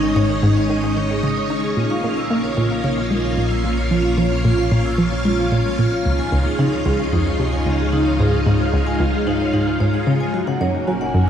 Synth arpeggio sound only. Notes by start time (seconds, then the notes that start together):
0.16 G#2
0.43 G#2
0.70 D#3
0.96 D#3
1.23 C#3
1.50 D#4
1.77 A#2
2.04 A#2
2.31 A#3
2.57 A#2
2.84 C#3
3.11 G#3
3.38 A#2
3.64 A#2
3.91 F3
4.18 F3
4.45 A#2
4.72 A#2
4.98 F3
5.25 G#3
5.52 A#2
5.79 A#2
6.06 C#2
6.32 C#2
6.59 C#3
6.86 C#2
7.13 F2
7.39 C3
7.66 C#2
7.93 C#2
8.20 G#2
8.46 G#2
8.73 C#2
9.00 C#2
9.27 G#2
9.54 G#2
9.80 G#2
10.07 C#3
10.34 F#2
10.61 F#2
10.88 F#3
11.14 F#2